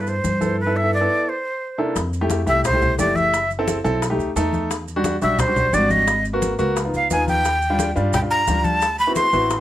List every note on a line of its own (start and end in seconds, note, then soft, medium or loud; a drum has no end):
0.00 0.21 G2 medium
0.00 0.12 B3 medium
0.00 0.12 E4 medium
0.00 0.12 A4 medium
0.00 0.10 B4 medium
0.07 0.59 C5 medium
0.07 high bongo soft
0.07 high conga soft
0.07 maracas soft
0.24 1.04 G2 medium
0.24 high bongo soft
0.24 low bongo medium
0.24 high conga medium
0.24 maracas medium
0.41 0.59 B3 medium
0.41 0.59 E4 medium
0.41 0.59 A4 medium
0.41 high bongo soft
0.41 high conga medium
0.41 maracas soft
0.60 0.78 B4 medium
0.66 0.79 B3 medium
0.66 0.79 E4 medium
0.66 0.79 A4 medium
0.77 0.93 E5 medium
0.83 0.96 B3 medium
0.83 0.96 E4 medium
0.83 0.96 A4 medium
0.94 1.31 D5 medium
1.01 1.27 B3 medium
1.01 1.27 E4 medium
1.01 1.27 A4 medium
1.29 1.80 C5 medium
1.78 1.96 C3 medium
1.78 1.96 A#3 medium
1.78 1.96 D4 medium
1.78 1.96 E4 medium
1.78 1.96 A4 medium
1.96 2.44 F2 medium
1.96 high bongo medium
1.96 high conga soft
1.96 maracas medium
2.13 high conga soft
2.13 maracas soft
2.21 2.40 A3 medium
2.21 2.40 E4 medium
2.21 2.40 G4 loud
2.30 high bongo medium
2.30 high conga medium
2.30 maracas medium
2.46 2.95 C2 medium
2.46 2.65 A3 medium
2.46 2.65 E4 medium
2.46 2.65 G4 medium
2.46 2.64 E5 medium
2.46 high bongo soft
2.46 high conga soft
2.46 maracas soft
2.64 2.97 C5 medium
2.64 high bongo medium
2.64 high conga soft
2.64 low conga medium
2.64 maracas medium
2.73 2.91 A3 medium
2.73 2.91 E4 medium
2.73 2.91 G4 medium
2.82 high bongo soft
2.82 high conga soft
2.82 low conga medium
2.82 maracas soft
2.99 3.79 F#1 medium
2.99 3.33 A3 medium
2.99 3.33 E4 medium
2.99 3.33 G4 medium
2.99 3.17 D5 medium
2.99 high bongo soft
2.99 low bongo medium
2.99 high conga medium
2.99 maracas medium
3.16 3.50 E5 medium
3.16 high bongo soft
3.16 high conga medium
3.16 maracas soft
3.33 high bongo medium
3.33 high conga soft
3.33 maracas medium
3.51 high conga soft
3.51 maracas soft
3.59 3.77 C4 medium
3.59 3.77 E4 medium
3.59 3.77 A4 medium
3.68 high bongo medium
3.68 high conga medium
3.68 maracas medium
3.84 4.17 B1 loud
3.84 4.02 C4 medium
3.84 4.02 E4 medium
3.84 4.02 A4 loud
3.84 high bongo soft
3.84 high conga soft
3.84 maracas soft
4.02 high bongo medium
4.02 high conga soft
4.02 maracas medium
4.10 4.28 A3 medium
4.10 4.28 D#4 medium
4.10 4.28 G4 medium
4.19 4.35 D2 medium
4.19 high bongo soft
4.19 high conga soft
4.19 maracas soft
4.36 5.16 E2 medium
4.36 4.71 A3 medium
4.36 4.71 D#4 medium
4.36 4.71 A4 loud
4.36 high bongo soft
4.36 low bongo medium
4.36 high conga soft
4.36 maracas medium
4.53 high bongo soft
4.53 high conga medium
4.53 maracas soft
4.70 high bongo medium
4.70 high conga soft
4.70 maracas medium
4.88 high conga soft
4.88 maracas soft
4.96 5.14 G3 medium
4.96 5.14 D4 medium
4.96 5.14 F#4 loud
5.04 high bongo medium
5.04 high conga medium
5.04 maracas medium
5.21 5.70 B1 medium
5.21 5.40 G3 medium
5.21 5.40 D4 medium
5.21 5.40 F#4 medium
5.21 5.41 E5 loud
5.21 high bongo soft
5.21 high conga soft
5.21 maracas soft
5.39 5.75 C5 loud
5.39 high bongo medium
5.39 high conga soft
5.39 low conga medium
5.39 maracas medium
5.47 5.66 G3 medium
5.47 5.66 D4 medium
5.47 5.66 F#4 medium
5.56 high bongo soft
5.56 high conga soft
5.56 low conga medium
5.56 maracas soft
5.73 6.53 G#1 medium
5.73 6.07 G3 medium
5.73 6.07 D4 medium
5.73 6.08 F#4 medium
5.73 5.92 D5 loud
5.73 high bongo soft
5.73 low bongo medium
5.73 high conga medium
5.73 maracas medium
5.90 6.25 D#5 medium
5.90 high bongo soft
5.90 high conga medium
5.90 maracas soft
6.08 high bongo medium
6.08 high conga soft
6.08 maracas medium
6.25 high conga soft
6.25 maracas soft
6.33 6.51 A#3 medium
6.33 6.51 B3 medium
6.33 6.52 F#4 loud
6.42 high bongo medium
6.42 high conga medium
6.42 maracas medium
6.59 6.91 C#2 medium
6.59 6.76 A#3 medium
6.59 6.76 B3 medium
6.59 6.76 F#4 loud
6.59 high bongo soft
6.59 high conga soft
6.59 maracas soft
6.77 high bongo medium
6.77 high conga soft
6.77 maracas medium
6.84 7.03 B3 medium
6.84 7.03 D#4 medium
6.84 7.03 F4 medium
6.93 7.09 C#2 medium
6.93 7.10 F5 medium
6.93 high bongo soft
6.93 high conga soft
6.93 maracas soft
7.10 7.91 D#2 medium
7.10 7.45 B3 medium
7.10 7.45 D#4 medium
7.10 7.45 F4 medium
7.10 7.27 G#5 medium
7.10 high bongo soft
7.10 low bongo medium
7.10 high conga soft
7.10 maracas medium
7.28 7.93 G5 loud
7.28 high bongo soft
7.28 high conga medium
7.28 maracas soft
7.45 high bongo medium
7.45 maracas medium
7.62 high conga soft
7.62 maracas soft
7.70 7.88 G3 medium
7.70 7.88 D4 medium
7.70 7.88 F4 loud
7.79 high bongo medium
7.79 high conga medium
7.79 maracas medium
7.96 8.44 G2 medium
7.96 8.14 G3 medium
7.96 8.14 D4 medium
7.96 8.14 F4 loud
7.96 high bongo soft
7.96 high conga soft
7.96 maracas soft
8.13 8.20 G5 medium
8.13 high bongo medium
8.13 high conga soft
8.13 low conga medium
8.13 maracas medium
8.22 8.40 G3 medium
8.22 8.40 D4 medium
8.22 8.40 F4 medium
8.31 8.66 A#5 loud
8.31 high bongo soft
8.31 high conga soft
8.31 maracas soft
8.47 9.28 D2 medium
8.47 8.82 G3 medium
8.47 8.82 D4 medium
8.47 8.82 F4 medium
8.47 high bongo soft
8.47 low bongo medium
8.47 high conga medium
8.47 maracas medium
8.64 8.99 A5 loud
8.64 high bongo soft
8.64 high conga medium
8.64 maracas soft
8.82 high bongo medium
8.82 high conga soft
8.82 maracas medium
8.98 9.15 B5 loud
8.98 high conga soft
8.98 maracas soft
9.07 9.26 B3 medium
9.07 9.25 C4 medium
9.07 9.26 E4 medium
9.07 9.26 F#4 medium
9.16 9.60 C6 loud
9.16 high bongo medium
9.16 high conga medium
9.16 maracas medium
9.33 9.60 A1 medium
9.33 9.51 B3 medium
9.33 9.51 C4 medium
9.33 9.51 E4 medium
9.33 9.51 F#4 medium
9.33 high bongo soft
9.33 high conga soft
9.33 maracas soft
9.50 high bongo medium
9.50 high conga soft
9.50 maracas medium